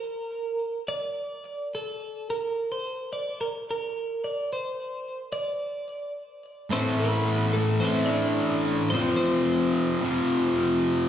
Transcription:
Already playing: A#4
0.88 D5
1.75 A4
2.30 A#4
2.72 C5
3.13 D5
3.41 A#4
3.71 A#4
4.24 D5
4.53 C5
5.33 D5
6.71 A2 E3 A3 C4 C5
6.99 B3 B4
7.53 A3 A4
7.80 A2 E3 A3 C4 C5
8.06 D4 D5
8.90 F2 C3 C5
8.95 F3 C4
9.16 C4 C5
10.02 F2 C3 F3

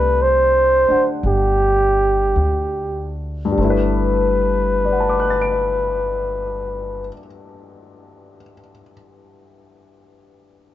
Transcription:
Already playing: C2 A3 D4 G4 B4 D5
0.22 C5
0.88 D4 F#5, muted upright bass stroke
1.23 G1 G4
2.36 D2
3.45 G2
3.52 G3
3.58 G1 A3 B4
3.64 E4
3.70 B4
4.85 D5
4.92 F#5
5.00 A5
5.09 D6
5.20 F#6
5.30 A6
5.42 D7

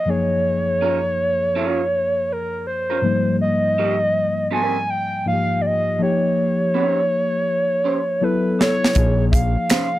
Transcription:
Already playing: D#5
0.05 F#2 F3 A#3 D#4
0.09 G#4 C#5
0.81 C#4 F4 A#4
1.55 C#4 F4 A#4
2.32 A#4
2.67 C5
2.90 C#4 F4 A#4
3.02 G#2 F3 A#3 D#4
3.06 G3
3.41 D#5
3.78 C4 G4 A#4
4.51 C4 G4 A#4 G#5
4.90 G5
5.25 G#2 F3 A#3 D#4 F4 F5
5.33 G4
5.61 D5
5.66 D#5
5.99 F3 A#3 D#4 C#5
6.03 G4
6.74 C#4 G4 C5
7.84 C#4 G4 C5
8.21 F#3 B3 E4 A4 B4
8.59 D4 A4 C#5, snare
8.84 snare
8.94 A#1 F3 A#3 D#4, kick, closed hi-hat
8.99 G#4
9.31 E5 F5, kick, closed hi-hat
9.70 C#4 G#4 C5, finger snap, snare, closed hi-hat

